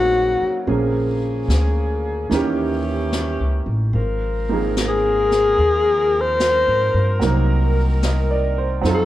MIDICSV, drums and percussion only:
0, 0, Header, 1, 2, 480
1, 0, Start_track
1, 0, Tempo, 815217
1, 402, Time_signature, 4, 2, 24, 8
1, 5329, End_track
2, 0, Start_track
2, 0, Title_t, "Drums"
2, 403, Note_on_c, 9, 25, 37
2, 880, Note_on_c, 9, 38, 49
2, 880, Note_on_c, 9, 44, 50
2, 939, Note_off_c, 9, 38, 0
2, 939, Note_off_c, 9, 44, 0
2, 1361, Note_off_c, 9, 25, 0
2, 1361, Note_on_c, 9, 25, 35
2, 1361, Note_on_c, 9, 38, 30
2, 1420, Note_off_c, 9, 38, 0
2, 1842, Note_on_c, 9, 38, 51
2, 1842, Note_on_c, 9, 44, 57
2, 1901, Note_off_c, 9, 38, 0
2, 1901, Note_off_c, 9, 44, 0
2, 2326, Note_off_c, 9, 25, 0
2, 2326, Note_on_c, 9, 25, 36
2, 2807, Note_on_c, 9, 38, 46
2, 2807, Note_on_c, 9, 44, 59
2, 2866, Note_off_c, 9, 38, 0
2, 2866, Note_off_c, 9, 44, 0
2, 3129, Note_on_c, 9, 38, 27
2, 3188, Note_off_c, 9, 38, 0
2, 3289, Note_off_c, 9, 25, 0
2, 3289, Note_on_c, 9, 25, 38
2, 3768, Note_on_c, 9, 38, 55
2, 3768, Note_on_c, 9, 44, 56
2, 3827, Note_off_c, 9, 38, 0
2, 3827, Note_off_c, 9, 44, 0
2, 4245, Note_off_c, 9, 25, 0
2, 4245, Note_on_c, 9, 25, 43
2, 4245, Note_on_c, 9, 38, 31
2, 4304, Note_off_c, 9, 38, 0
2, 4726, Note_on_c, 9, 38, 51
2, 4726, Note_on_c, 9, 44, 50
2, 4785, Note_off_c, 9, 38, 0
2, 4785, Note_off_c, 9, 44, 0
2, 5206, Note_off_c, 9, 25, 0
2, 5206, Note_on_c, 9, 25, 42
2, 5206, Note_on_c, 9, 38, 32
2, 5265, Note_off_c, 9, 38, 0
2, 5329, Note_off_c, 9, 25, 0
2, 5329, End_track
0, 0, End_of_file